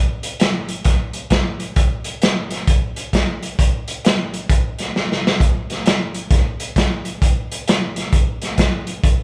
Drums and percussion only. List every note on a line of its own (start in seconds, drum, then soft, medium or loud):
0.23 closed hi-hat medium
0.40 snare loud
0.40 closed hi-hat medium
0.69 closed hi-hat medium
0.84 kick loud
0.84 snare soft
0.84 closed hi-hat medium
1.13 closed hi-hat medium
1.30 kick medium
1.30 snare loud
1.30 closed hi-hat medium
1.60 closed hi-hat medium
1.76 kick loud
1.76 closed hi-hat medium
2.04 closed hi-hat medium
2.22 snare loud
2.22 closed hi-hat medium
2.51 snare soft
2.51 closed hi-hat medium
2.67 kick loud
2.67 closed hi-hat medium
2.96 closed hi-hat medium
3.13 kick medium
3.13 snare loud
3.13 closed hi-hat medium
3.43 closed hi-hat medium
3.59 kick loud
3.59 closed hi-hat medium
3.88 closed hi-hat medium
4.05 snare loud
4.05 closed hi-hat medium
4.34 closed hi-hat medium
4.50 kick loud
4.50 closed hi-hat medium
4.79 snare soft
4.79 closed hi-hat medium
4.96 snare medium
5.12 snare medium
5.27 snare medium
5.40 kick loud
5.40 closed hi-hat medium
5.70 snare soft
5.70 closed hi-hat medium
5.86 snare loud
5.86 closed hi-hat medium
6.14 closed hi-hat medium
6.31 kick loud
6.31 snare soft
6.31 closed hi-hat medium
6.60 closed hi-hat medium
6.76 kick medium
6.76 snare loud
6.76 closed hi-hat medium
7.05 closed hi-hat medium
7.22 kick loud
7.22 closed hi-hat medium
7.52 closed hi-hat medium
7.68 snare loud
7.68 closed hi-hat medium
7.96 snare soft
7.96 closed hi-hat medium
8.13 kick loud
8.13 closed hi-hat medium
8.42 snare soft
8.42 closed hi-hat medium
8.58 kick medium
8.58 snare loud
8.58 closed hi-hat medium
8.87 closed hi-hat medium
9.04 kick loud
9.04 closed hi-hat medium